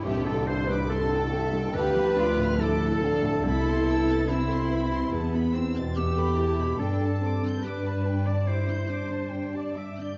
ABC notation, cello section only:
X:1
M:4/4
L:1/8
Q:1/4=71
K:C
V:1 name="Cello section"
z4 G F E D | E2 C2 B, C B, E | D C D2 E D3 |]